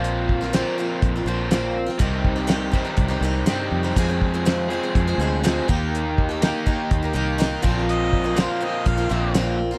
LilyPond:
<<
  \new Staff \with { instrumentName = "Harmonica" } { \time 4/4 \key bes \dorian \tempo 4 = 122 r1 | r1 | r1 | r1 |
ees''4 c''16 f''16 ees''8 f''4 r4 | }
  \new Staff \with { instrumentName = "Steel-string acoustic guitar" } { \time 4/4 \key bes \dorian <bes, f bes c' f'>8. <bes c' f'>16 <bes, f bes c' f'>8 <f bes c' f'>8. <bes c' f'>16 <f bes c' f'>8 <bes, f bes c' f'>8. <bes c' f'>16 | <c ees c' ees' g'>8. <c' ees' g'>16 <c ees c' ees' g'>8 <ees c' ees' g'>16 <c' ees' g'>8 <c' ees' g'>16 <ees c' ees' g'>8 <c ees c' ees' g'>8. <c' ees' g'>16 | <f, c f aes c' aes'>16 <f aes c' aes'>8 <f aes c' aes'>16 <f, c f aes c' aes'>8 <f aes c' aes'>16 <f aes c' aes'>8 <f aes c' aes'>16 <f aes c' aes'>8 <f, c f aes c' aes'>8 <ees bes ees' g'>8~ | <ees bes ees' g'>8. <bes ees' g'>16 <ees bes ees' g'>8 <ees bes ees' g'>8. <bes ees' g'>16 <ees bes ees' g'>8 <ees bes ees' g'>8 <bes, f bes c' f'>8~ |
<bes, f bes c' f'>8. <bes c' f'>16 <bes, f bes c' f'>8 <f bes c' f'>8. <bes c' f'>16 <f bes c' f'>8 <bes, f bes c' f'>8. <bes c' f'>16 | }
  \new Staff \with { instrumentName = "Overdriven electric guitar" } { \time 4/4 \key bes \dorian <bes, f bes c' f'>4 <bes, f bes c' f'>4. <bes, f bes c' f'>4 r8 | <c ees g c' g'>4. <c ees g c' g'>4. <c ees g c' g'>4 | <f, c f aes c' aes'>4. <f, c f aes c' aes'>4. <f, c f aes c' aes'>8 <ees bes ees' g'>8~ | <ees bes ees' g'>4 <ees bes ees' g'>4. <ees bes ees' g'>4 <bes, f bes c' f'>8~ |
<bes, f bes c' f'>4 <bes, f bes c' f'>4. <bes, f bes c' f'>4 r8 | }
  \new Staff \with { instrumentName = "Fingered electric bass" } { \clef bass \time 4/4 \key bes \dorian bes,,4. r8 bes,,8 bes,,4. | c,2 c,8 c,8 g,8 f,8 | f,2 f,8 d,4 ees,8~ | ees,4. r8 ees,8 c,4 bes,,8~ |
bes,,4. r8 bes,,8 bes,,4. | }
  \new DrumStaff \with { instrumentName = "Drums" } \drummode { \time 4/4 hh8 bd16 sn16 <hh sn>4 <hh bd>4 <hh sn>8. sn16 | <hh bd>8 bd8 <hh sn>8 bd8 <hh bd>4 <hh sn>8. sn16 | <hh bd>8 bd8 <hh sn>4 <hh bd>4 <hh sn>8 bd8 | hh8 bd8 <hh sn>8 bd8 <hh bd>4 <hh sn>8 bd16 sn16 |
hh8 bd8 <hh sn>4 <hh bd>4 <hh sn>4 | }
>>